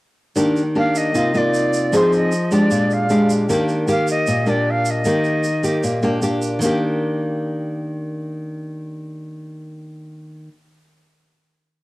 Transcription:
0.36 D#3 A#3 D4 G4, shaker
0.56 shaker
0.75 A#3 D4 G4 F5
0.95 D#5, shaker
1.14 C3 A#3 D#4 F4, shaker
1.34 A#3 D#4 F4 D5, shaker
1.54 shaker
1.73 shaker
1.92 F3 C4 D#4 G#4, shaker
1.97 C5
2.12 D#5, shaker
2.32 shaker
2.51 G#3 D4 G4 D5, shaker
2.71 A#2, shaker
2.91 F5, shaker
3.09 G#3 D4 G4, shaker
3.30 shaker
3.49 D#3 A#3 D4 G4, shaker
3.68 shaker
3.88 A#3 G4 F5, shaker
4.07 D#5, shaker
4.27 A#2, shaker
4.46 A#3 D4 G4 D5, shaker
4.70 F5
4.85 shaker
4.90 D#5
5.05 D#3 A#3 G4, shaker
5.24 shaker
5.44 shaker
5.63 A#3 G4, shaker
5.83 A#2, shaker
6.03 A#3 D4 G4, shaker
6.22 A#3 D4 G4, shaker
6.42 shaker
6.59 D#3 A#3, shaker
6.63 D4 G4

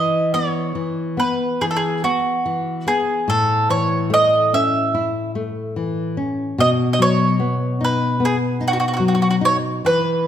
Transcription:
Already playing: E3 D#5
0.34 B3 C#5
0.75 E3
1.17 B3 B4
1.61 E3 G#4
1.71 A4
1.76 G#4
2.03 B3 F#4
2.46 E3
2.87 B3 G#4
3.28 A2 A4
3.69 E3 C#5
4.10 A3 D#5
4.53 C#4 E5
4.94 E4
5.35 A3
5.76 E3
6.17 C#4
6.58 B2 D#5
6.93 D#5
6.99 F#3 C#5
7.39 B3
7.81 D#4 B4
8.20 B3
8.25 G#4
8.61 D#4
8.68 F#4
8.73 F#4
8.80 F#4
8.88 F#4
8.94 F#4
8.99 F#3
9.08 F#4
9.15 F#4
9.22 F#4
9.30 F#4
9.41 D#4
9.45 C#5
9.85 E3 B4

